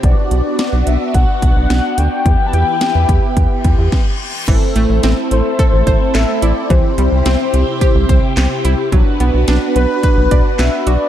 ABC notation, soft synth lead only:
X:1
M:4/4
L:1/16
Q:1/4=108
K:Ador
V:1 name="Soft synth lead"
d6 e2 f6 g2- | g3/2 a/2 g4 z8 z2 | z6 c6 e2 d2 | c12- c2 z2 |
z6 B6 e2 d2 |]